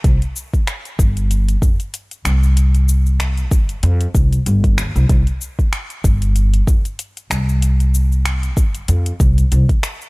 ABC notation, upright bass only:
X:1
M:4/4
L:1/16
Q:"Swing 16ths" 1/4=95
K:Gm
V:1 name="Upright bass" clef=bass
C,, z4 z G,,,3 z F,, z3 C,,2- | C,,6 G,,, z F,, z C,, z G,,,2 E,, C,, | C,, z4 z G,,,3 z F,, z3 C,,2- | C,,6 G,,, z F,, z C,, z C,, z3 |]